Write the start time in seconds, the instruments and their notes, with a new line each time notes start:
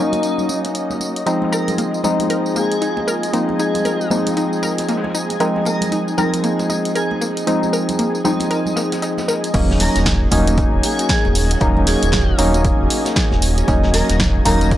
Already playing: synth stab F#3 A#3 C#4 D#4, string machine C#4 F#4 D#5, digital synth lead D#4
0.13 closed hi-hat, tambourine, muted conga, high conga
0.23 closed hi-hat, tambourine
0.38 tambourine, low conga
0.49 closed hi-hat, tambourine, high conga
0.64 snare, closed hi-hat, tambourine, muted conga
0.75 closed hi-hat, tambourine
0.90 snare, tambourine, high conga
1.00 closed hi-hat, tambourine, muted conga
1.16 closed hi-hat, tambourine
1.26 synth stab F3 G#3 C4 D#4, string machine G#3 F4, synth arpeggio sound D#4, analog synth pad G#4 G#5, closed hi-hat, tambourine
1.42 snare, high conga
1.52 synth arpeggio sound A#4, digital synth lead A#4, tambourine
1.68 snare, closed hi-hat, tambourine, muted conga, low conga
1.78 synth arpeggio sound A#3, closed hi-hat, tambourine, high conga
1.94 tambourine
2.04 synth stab F3 G#3 C4 D#4, synth arpeggio sound D#4, tambourine, muted conga, low conga
2.20 closed hi-hat, tambourine, high conga
2.29 synth arpeggio sound A#4, closed hi-hat, tambourine
2.46 tambourine
2.55 synth arpeggio sound A#3, digital synth lead G#4, tambourine, muted conga, high conga
2.72 closed hi-hat, tambourine
2.81 synth arpeggio sound D#4, closed hi-hat, tambourine
2.97 closed hi-hat, muted conga, high conga
3.08 synth arpeggio sound A#4, open hi-hat, tambourine
3.23 closed hi-hat, tambourine
3.33 synth stab F3 G#3 C4 D#4, synth arpeggio sound A#3, closed hi-hat, tambourine
3.49 muted conga, high conga
3.59 synth arpeggio sound D#4, digital synth lead G#4, tambourine
3.75 closed hi-hat, tambourine, low conga
3.85 synth arpeggio sound A#4, closed hi-hat, tambourine, muted conga, high conga
4.01 tambourine
4.10 synth stab F3 G#3 C4 D#4, synth arpeggio sound A#3, tambourine, low conga
4.26 closed hi-hat, tambourine, high conga
4.37 synth arpeggio sound D#4, closed hi-hat, tambourine, muted conga
4.53 tambourine
4.63 synth arpeggio sound A#4, tambourine, high conga
4.78 snare, closed hi-hat, tambourine, muted conga
4.89 synth arpeggio sound A#3, snare, closed hi-hat, tambourine
4.96 snare, closed hi-hat
5.04 snare, closed hi-hat, high conga
5.09 snare, closed hi-hat
5.14 synth arpeggio sound D#4, closed hi-hat, tambourine
5.30 closed hi-hat, tambourine, muted conga
5.40 synth stab F3 G#3 C4 D#4, string machine D#4, synth arpeggio sound A#4, closed hi-hat, tambourine
5.56 snare, high conga
5.65 synth arpeggio sound A#3, digital synth lead A#4, closed hi-hat, tambourine, muted conga
5.81 snare, closed hi-hat, tambourine, low conga
5.91 synth arpeggio sound D#4, closed hi-hat, tambourine, high conga
6.08 tambourine
6.17 synth stab F3 G#3 C4 D#4, synth arpeggio sound A#4, digital synth lead A#4, closed hi-hat, tambourine, muted conga, low conga
6.34 closed hi-hat, tambourine, high conga
6.44 synth arpeggio sound A#3, closed hi-hat, tambourine
6.59 tambourine, muted conga
6.70 synth arpeggio sound D#4, closed hi-hat, tambourine, high conga
6.85 closed hi-hat, tambourine
6.95 digital synth lead G#4, synth arpeggio sound A#4, closed hi-hat, tambourine
7.11 closed hi-hat, muted conga, high conga
7.21 synth arpeggio sound A#3, open hi-hat, tambourine
7.37 closed hi-hat, tambourine
7.47 synth stab F3 G#3 C4 D#4, synth arpeggio sound D#4, closed hi-hat, tambourine, muted conga
7.63 tambourine, high conga
7.73 synth arpeggio sound A#4, closed hi-hat, tambourine
7.89 closed hi-hat, tambourine, low conga
7.98 synth arpeggio sound A#3, closed hi-hat, tambourine, muted conga, high conga
8.15 tambourine
8.24 synth stab F3 G#3 C4 D#4, digital synth lead D#4, synth arpeggio sound D#4, closed hi-hat, tambourine, low conga
8.40 closed hi-hat, tambourine, muted conga, high conga
8.51 synth arpeggio sound A#4, closed hi-hat, tambourine
8.66 tambourine, low conga
8.76 synth arpeggio sound A#3, snare, closed hi-hat, tambourine, high conga
8.92 snare, closed hi-hat, tambourine, muted conga
9.02 synth arpeggio sound D#4, snare, closed hi-hat, tambourine
9.18 snare, closed hi-hat, tambourine, high conga
9.28 synth arpeggio sound A#4, snare, closed hi-hat, tambourine, muted conga
9.44 closed hi-hat, tambourine
9.54 sub bass D#1, synth stab F#3 A#3 C#4 D#4, string machine C#4 F#4 D#5, analog synth pad G#4 G#5, kick, closed hi-hat, crash, tambourine
9.70 snare, high conga
9.80 digital synth lead A#4, snare, closed hi-hat, open hi-hat, tambourine
9.95 sub bass D#1, snare, closed hi-hat, tambourine, muted conga, low conga
10.06 kick, snare, closed hi-hat, tambourine
10.31 sub bass D#1, synth stab F#3 A#3 C#4 D#4, kick, closed hi-hat, open hi-hat, tambourine, muted conga, low conga
10.47 closed hi-hat, tambourine, high conga
10.58 kick, closed hi-hat, tambourine
10.73 sub bass D#1
10.83 digital synth lead G#4, closed hi-hat, open hi-hat, tambourine, muted conga, high conga
10.99 closed hi-hat, tambourine
11.09 kick, snare, closed hi-hat, tambourine
11.25 sub bass D#1, closed hi-hat, muted conga, high conga
11.35 open hi-hat, tambourine
11.51 closed hi-hat, tambourine
11.61 sub bass D#1, synth stab F#3 A#3 C#4 D#4, kick, closed hi-hat, tambourine
11.77 muted conga, high conga
11.87 digital synth lead G#4, snare, closed hi-hat, open hi-hat, tambourine
12.03 sub bass D#1, closed hi-hat, tambourine, low conga
12.12 kick, snare, closed hi-hat, tambourine, muted conga, high conga
12.38 sub bass D#1, synth stab F#3 A#3 C#4 D#4, closed hi-hat, open hi-hat, tambourine, low conga
12.54 closed hi-hat, tambourine, high conga
12.65 kick, closed hi-hat, tambourine, muted conga
12.80 sub bass D#1
12.90 closed hi-hat, open hi-hat, tambourine, high conga
13.05 snare, closed hi-hat, tambourine, muted conga
13.16 kick, snare, closed hi-hat, tambourine
13.31 sub bass D#1, snare, high conga
13.42 closed hi-hat, open hi-hat, tambourine
13.58 closed hi-hat, tambourine, muted conga
13.68 sub bass D#1, synth stab F#3 A#3 C#4 D#4, kick, closed hi-hat, tambourine
13.83 snare, high conga
13.93 digital synth lead A#4, snare, closed hi-hat, open hi-hat, tambourine, muted conga
14.09 sub bass D#1, snare, closed hi-hat, tambourine, low conga
14.19 kick, snare, closed hi-hat, high conga
14.45 sub bass D#1, synth stab F#3 A#3 C#4 D#4, digital synth lead A#4, kick, closed hi-hat, open hi-hat, tambourine, muted conga, low conga
14.61 closed hi-hat, tambourine, high conga
14.71 kick, closed hi-hat, tambourine